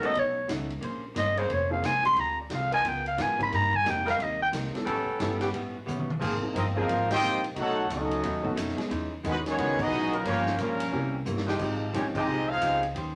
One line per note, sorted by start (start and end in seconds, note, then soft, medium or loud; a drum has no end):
0.01 0.10 D#3 medium
0.01 0.46 A3 medium
0.01 0.10 B3 medium
0.01 0.46 B3 medium
0.01 0.10 C#4 medium
0.01 0.46 C#4 medium
0.01 0.46 D#4 medium
0.01 0.47 F#4 medium
0.01 0.10 A4 loud
0.01 muted upright bass stroke soft
0.01 ride medium
0.06 0.20 D#5 loud
0.14 0.48 B1 medium
0.14 0.37 B2 medium
0.14 0.38 A3 medium
0.14 0.38 C#4 soft
0.14 0.39 D#4 medium
0.14 kick soft
0.14 ride medium
0.19 0.50 C#5 medium
0.47 0.81 C#2 medium
0.47 0.70 B2 medium
0.47 0.71 A3 medium
0.47 0.71 C#4 medium
0.47 0.72 D#4 medium
0.47 kick soft
0.47 snare medium
0.47 hi-hat pedal medium
0.47 ride medium
0.70 ride soft
0.81 1.15 A#1 medium
0.81 1.04 A#3 medium
0.81 1.05 C#4 medium
0.81 1.05 G#4 medium
0.81 1.06 C5 medium
0.81 kick soft
0.81 ride medium
1.15 1.49 G1 loud
1.15 1.38 A#3 medium
1.15 1.38 C#4 medium
1.15 1.39 G#4 medium
1.15 1.39 C5 medium
1.15 1.40 D#5 loud
1.15 kick soft
1.15 snare medium
1.15 hi-hat pedal medium
1.15 ride medium
1.36 1.45 C#3 loud
1.36 1.46 A#3 medium
1.36 1.45 C4 medium
1.36 1.45 G#4 loud
1.36 1.55 C5 loud
1.36 ride medium
1.48 1.82 F1 medium
1.48 1.72 A#3 medium
1.48 1.72 C#4 medium
1.48 1.73 G#4 medium
1.48 1.73 C5 medium
1.48 kick soft
1.48 ride medium
1.53 1.72 C#5 medium
1.70 1.81 A#3 medium
1.70 1.82 C4 medium
1.70 1.82 C#4 medium
1.70 1.82 F4 medium
1.70 1.82 G#4 medium
1.70 1.87 F5 medium
1.83 2.16 C2 medium
1.83 2.05 A#3 medium
1.83 2.06 C#4 medium
1.83 2.06 G#4 medium
1.83 2.06 C5 medium
1.83 2.05 G#5 medium
1.83 kick soft
1.83 snare medium
1.83 hi-hat pedal medium
1.83 ride medium
2.03 2.15 G#3 medium
2.03 2.15 C4 medium
2.03 2.16 D4 medium
2.03 2.16 F4 medium
2.03 2.16 G4 medium
2.03 2.22 C6 loud
2.03 ride soft
2.16 2.49 D2 medium
2.16 2.39 D3 soft
2.16 2.40 C4 medium
2.16 2.40 F4 medium
2.16 2.41 G#4 medium
2.16 kick soft
2.16 ride medium
2.20 2.40 A#5 loud
2.41 2.56 D5 medium
2.50 2.83 C2 loud
2.50 2.73 D3 medium
2.50 2.74 C4 medium
2.50 2.74 F4 medium
2.50 2.74 G#4 medium
2.50 kick soft
2.50 snare medium
2.50 hi-hat pedal soft
2.50 ride medium
2.54 2.73 F5 medium
2.71 2.79 F3 medium
2.71 2.80 B3 medium
2.71 2.80 D#4 medium
2.71 2.80 A#4 loud
2.71 2.89 G#5 loud
2.71 ride medium
2.83 3.17 C#2 medium
2.83 3.06 C#3 medium
2.83 3.07 B3 medium
2.83 3.07 F4 medium
2.83 3.08 A#4 medium
2.83 kick soft
2.83 ride medium
2.88 3.07 G5 loud
3.06 3.23 F5 loud
3.06 ride medium
3.17 3.51 G#2 loud
3.17 3.40 C#3 medium
3.17 3.41 B3 medium
3.17 3.41 F4 medium
3.17 3.41 A#4 medium
3.17 kick soft
3.17 snare medium
3.17 hi-hat pedal medium
3.17 ride medium
3.22 3.41 G#5 medium
3.38 3.50 A#3 medium
3.38 3.50 C4 medium
3.38 3.50 D#4 medium
3.38 3.50 G4 medium
3.38 3.51 A#4 medium
3.38 kick medium
3.38 ride medium
3.42 3.57 B5 loud
3.50 3.84 G2 medium
3.50 3.74 C3 soft
3.50 3.74 G3 medium
3.50 3.74 A#3 medium
3.50 3.75 D#4 medium
3.50 kick soft
3.50 snare soft
3.50 ride medium
3.55 3.77 A#5 loud
3.73 3.91 G#5 loud
3.73 kick medium
3.84 4.18 F2 loud
3.84 4.07 C3 medium
3.84 4.07 G3 medium
3.84 4.08 A#3 medium
3.84 4.36 A#3 medium
3.84 4.37 C4 medium
3.84 4.08 D#4 medium
3.84 4.37 D#4 soft
3.84 4.37 G4 medium
3.84 4.37 A#4 medium
3.84 kick soft
3.84 snare medium
3.84 hi-hat pedal medium
3.84 ride medium
3.89 4.09 G5 loud
4.05 4.14 G3 loud
4.05 4.14 C4 loud
4.05 4.14 D#4 loud
4.05 4.14 A#4 loud
4.05 snare medium
4.05 ride medium
4.10 4.24 F5 loud
4.17 4.52 D#2 medium
4.17 4.41 C3 soft
4.17 4.41 G3 medium
4.17 4.42 A#3 medium
4.17 4.42 D#4 medium
4.17 kick soft
4.17 ride medium
4.23 4.42 D#5 medium
4.42 4.49 G5 loud
4.51 4.73 C2 loud
4.51 4.75 C3 medium
4.51 4.75 G3 medium
4.51 4.76 A#3 medium
4.51 4.76 D#4 medium
4.51 kick soft
4.51 snare medium
4.51 hi-hat pedal medium
4.51 ride medium
4.64 snare soft
4.74 4.85 B3 medium
4.74 4.85 C#4 medium
4.74 4.85 E4 medium
4.74 4.86 G4 medium
4.74 4.86 A4 medium
4.74 snare soft
4.74 ride medium
4.84 5.06 A1 loud
4.84 5.08 A2 medium
4.84 5.37 G3 loud
4.84 5.09 G3 medium
4.84 5.36 B3 medium
4.84 5.10 B3 medium
4.84 5.36 C#4 medium
4.84 5.36 A4 loud
4.84 kick soft
4.84 ride medium
4.89 5.10 C#4 medium
5.08 muted upright bass stroke soft
5.19 5.52 G1 loud
5.19 5.42 A2 medium
5.19 5.42 G3 medium
5.19 5.70 B3 medium
5.19 5.43 B3 medium
5.19 5.70 C#4 medium
5.19 5.43 C#4 medium
5.19 5.70 E4 medium
5.19 5.71 G4 medium
5.19 5.71 A4 medium
5.19 kick soft
5.19 snare medium
5.19 hi-hat pedal medium
5.19 ride medium
5.39 5.48 G3 loud
5.39 5.49 B3 medium
5.39 5.49 C#4 medium
5.39 5.49 G4 loud
5.39 snare medium
5.39 ride medium
5.53 5.86 A1 medium
5.53 5.76 A2 medium
5.53 5.76 G3 medium
5.53 5.77 B3 medium
5.53 5.78 C#4 medium
5.53 kick soft
5.53 ride medium
5.86 6.20 B1 medium
5.86 6.09 A2 medium
5.86 6.10 G3 medium
5.86 6.10 B3 medium
5.86 6.10 C#4 medium
5.86 hi-hat pedal medium
5.86 mid tom medium
5.99 mid tom medium
6.10 mid tom medium
6.19 6.41 G#1 medium
6.19 6.43 G#2 medium
6.19 6.35 F3 medium
6.19 6.44 F3 medium
6.19 6.35 A#3 medium
6.19 6.44 A#3 medium
6.19 6.35 C4 medium
6.19 6.45 C4 medium
6.19 6.34 G#4 medium
6.19 kick medium
6.19 crash medium
6.42 6.53 A#3 medium
6.42 6.53 C4 medium
6.42 6.53 D#4 medium
6.42 6.54 F4 medium
6.42 6.54 G#4 medium
6.42 muted upright bass stroke soft
6.54 6.88 G1 loud
6.54 6.77 G#2 medium
6.54 6.64 F3 medium
6.54 6.77 F3 medium
6.54 6.78 A#3 medium
6.54 6.64 C4 medium
6.54 6.78 C4 medium
6.54 6.66 C4 medium
6.54 6.64 D#4 medium
6.54 6.66 F4 medium
6.54 6.66 A#4 medium
6.54 6.66 D#5 medium
6.54 kick soft
6.54 hi-hat pedal medium
6.54 ride medium
6.74 6.84 F3 medium
6.74 7.08 F3 medium
6.74 6.83 A#3 medium
6.74 6.87 A#3 medium
6.74 6.83 C4 medium
6.74 6.87 C4 medium
6.74 6.87 D#4 medium
6.74 6.87 F4 medium
6.74 7.08 F4 medium
6.74 6.83 G#4 loud
6.74 6.88 G#4 loud
6.78 7.08 C4 medium
6.78 7.09 D#4 medium
6.78 7.09 A#4 medium
6.78 7.09 C5 medium
6.78 7.09 F5 medium
6.87 7.21 G#1 medium
6.87 7.10 G#2 medium
6.87 7.11 F3 medium
6.87 7.11 A#3 medium
6.87 7.12 C4 medium
6.87 kick soft
6.87 ride medium
7.10 7.42 C4 loud
7.10 7.41 D#4 loud
7.10 7.43 F4 loud
7.10 7.41 G4 loud
7.10 7.43 C5 loud
7.10 7.43 D#5 loud
7.10 7.43 G5 loud
7.10 snare loud
7.10 ride medium
7.21 7.55 A#1 medium
7.21 7.44 G#2 medium
7.21 7.45 F3 medium
7.21 7.45 A#3 medium
7.21 7.45 C4 medium
7.21 hi-hat pedal medium
7.44 ride medium
7.55 7.88 B1 loud
7.55 7.78 B2 medium
7.55 7.87 A3 loud
7.55 7.78 A3 medium
7.55 7.79 C#4 medium
7.55 7.87 D#4 loud
7.55 7.79 D#4 medium
7.55 7.87 F#4 loud
7.55 kick soft
7.55 ride medium
7.60 7.90 D#4 medium
7.60 7.90 A4 medium
7.60 7.90 C#5 medium
7.60 7.90 F#5 loud
7.89 8.22 C#2 loud
7.89 8.12 B2 medium
7.89 8.53 F#3 medium
7.89 8.12 A3 medium
7.89 8.53 A3 medium
7.89 8.12 C#4 medium
7.89 8.53 D#4 medium
7.89 8.13 D#4 medium
7.89 kick soft
7.89 hi-hat pedal medium
7.89 ride medium
7.94 8.55 C#4 medium
7.94 8.55 F#4 medium
7.94 8.55 A4 medium
7.94 8.55 D#5 medium
8.11 ride medium
8.22 8.56 D#2 medium
8.22 8.45 B2 medium
8.22 8.46 A3 medium
8.22 8.46 C#4 medium
8.22 8.47 D#4 medium
8.22 kick soft
8.22 ride medium
8.43 8.54 A3 medium
8.43 8.55 B3 medium
8.43 8.55 C#4 medium
8.43 8.55 D#4 medium
8.43 8.55 F#4 medium
8.43 kick medium
8.55 8.77 F2 loud
8.55 8.78 B2 medium
8.55 8.79 A3 medium
8.55 8.79 C#4 medium
8.55 8.80 D#4 medium
8.55 kick soft
8.55 hi-hat pedal medium
8.55 ride medium
8.68 snare soft
8.76 8.88 G#3 medium
8.76 8.88 B3 medium
8.76 8.88 C#4 medium
8.76 8.89 D#4 medium
8.76 8.89 G#4 medium
8.76 muted upright bass stroke soft
8.76 snare medium
8.76 ride soft
8.89 9.23 E2 loud
8.89 9.12 E3 medium
8.89 9.12 G#3 medium
8.89 9.13 C#4 medium
8.89 9.13 D#4 medium
8.89 kick soft
8.89 ride medium
9.23 9.57 D#2 loud
9.23 9.35 D#3 medium
9.23 9.46 E3 medium
9.23 9.47 G#3 medium
9.23 9.34 G#3 medium
9.23 9.35 B3 medium
9.23 9.47 C#4 medium
9.23 9.47 D#4 medium
9.23 kick soft
9.23 hi-hat pedal medium
9.23 ride medium
9.30 9.38 G#3 medium
9.30 9.38 D#4 medium
9.30 9.38 F#4 medium
9.30 9.38 B4 loud
9.46 9.77 D#3 loud
9.46 9.77 G#3 medium
9.46 9.77 C#4 loud
9.46 9.79 G#4 medium
9.46 snare medium
9.46 ride medium
9.50 9.79 B3 medium
9.50 9.79 F#4 medium
9.50 9.79 C#5 loud
9.56 9.90 C#2 medium
9.56 9.80 E3 medium
9.56 9.80 G#3 medium
9.56 9.77 G#3 medium
9.56 9.77 B3 medium
9.56 9.77 C#4 medium
9.56 9.81 C#4 medium
9.56 9.77 D#4 medium
9.56 9.81 D#4 medium
9.56 9.77 F#4 medium
9.56 kick soft
9.56 ride medium
9.78 10.12 G#3 loud
9.78 10.13 B3 loud
9.78 10.12 D#4 loud
9.78 kick loud
9.78 crash medium
9.83 10.14 B3 loud
9.83 10.14 F#4 loud
9.83 10.15 G#4 loud
9.83 10.15 D#5 loud
9.90 10.23 B1 loud
9.90 10.14 E3 medium
9.90 10.14 G#3 medium
9.90 10.14 C#4 medium
9.90 10.15 D#4 medium
9.90 hi-hat pedal medium
10.11 10.55 G3 medium
10.11 10.56 C#4 medium
10.11 10.56 F4 medium
10.11 10.56 A#4 loud
10.11 ride medium
10.23 10.58 G1 loud
10.23 10.47 G2 medium
10.23 10.55 F3 loud
10.23 10.48 F3 medium
10.23 10.56 A#3 loud
10.23 10.57 A#3 loud
10.23 10.56 C#4 medium
10.23 kick soft
10.23 ride medium
10.27 10.49 A#3 medium
10.27 10.49 C#4 medium
10.27 10.57 F4 medium
10.27 10.57 G4 loud
10.27 10.57 C#5 loud
10.46 snare medium
10.58 10.91 A#1 loud
10.58 10.82 G2 medium
10.58 10.90 F3 medium
10.58 10.82 F3 medium
10.58 11.23 G3 medium
10.58 11.22 A#3 medium
10.58 10.82 A#3 medium
10.58 11.22 C#4 medium
10.58 11.23 C#4 medium
10.58 10.83 C#4 medium
10.58 10.91 F4 medium
10.58 11.23 A#4 medium
10.58 kick soft
10.58 hi-hat pedal medium
10.58 ride medium
10.80 ride medium
10.92 11.25 C2 medium
10.92 11.15 C3 medium
10.92 11.15 E3 medium
10.92 11.11 A#3 medium
10.92 11.16 A#3 medium
10.92 11.12 C4 medium
10.92 11.12 C#4 medium
10.92 11.16 C#4 medium
10.92 11.12 E4 medium
10.92 11.12 G4 medium
10.92 kick soft
11.25 11.59 G1 loud
11.25 11.48 C3 medium
11.25 11.49 E3 medium
11.25 11.49 A#3 medium
11.25 11.49 C#4 medium
11.25 hi-hat pedal medium
11.37 snare medium
11.47 11.91 F3 loud
11.47 11.91 G#3 medium
11.47 11.91 D#4 loud
11.47 11.91 G4 loud
11.47 snare loud
11.59 11.92 G#1 medium
11.59 11.82 F3 medium
11.59 11.79 G#3 medium
11.59 11.83 G#3 medium
11.59 11.79 C4 medium
11.59 11.79 D#4 medium
11.59 11.83 D#4 medium
11.59 11.79 F4 medium
11.59 11.80 G4 medium
11.59 11.84 G4 medium
11.59 kick medium
11.59 crash medium
11.93 12.26 A#1 loud
11.93 12.16 F3 medium
11.93 12.13 G#3 medium
11.93 12.16 G#3 medium
11.93 12.05 A#3 medium
11.93 12.13 C4 medium
11.93 12.06 C#4 medium
11.93 12.13 D#4 medium
11.93 12.17 D#4 medium
11.93 12.05 D#4 medium
11.93 12.13 F4 medium
11.93 12.17 G4 medium
11.93 12.05 G4 medium
11.93 12.13 G#4 medium
11.93 12.05 C#5 medium
11.93 kick soft
11.93 hi-hat pedal medium
11.93 ride medium
12.14 12.23 F3 loud
12.14 12.23 G#3 medium
12.14 12.47 G#3 medium
12.14 12.47 C4 medium
12.14 12.22 D#4 loud
12.14 12.47 D#4 medium
12.14 12.23 G4 loud
12.14 kick loud
12.14 crash medium
12.18 12.48 C4 medium
12.18 12.48 G4 medium
12.18 12.48 G#4 medium
12.18 12.48 D#5 loud
12.27 12.60 C2 medium
12.27 12.50 F3 medium
12.27 12.51 G#3 medium
12.27 12.51 D#4 medium
12.27 12.52 G4 medium
12.48 12.82 G#3 medium
12.48 12.82 C4 medium
12.48 12.83 D#4 loud
12.48 12.82 F4 medium
12.48 12.83 G#4 loud
12.48 12.83 C5 medium
12.48 12.83 F5 loud
12.61 12.94 C#2 medium
12.61 12.84 F3 medium
12.61 12.84 G#3 medium
12.61 12.84 D#4 medium
12.61 12.85 G4 medium
12.61 kick soft
12.61 hi-hat pedal medium
12.61 ride medium
12.83 ride medium
12.95 13.15 D#2 loud
12.95 13.15 D#3 medium
12.95 13.15 C#4 medium
12.95 13.15 G4 medium
12.95 13.15 C5 medium
12.95 kick soft
12.95 ride medium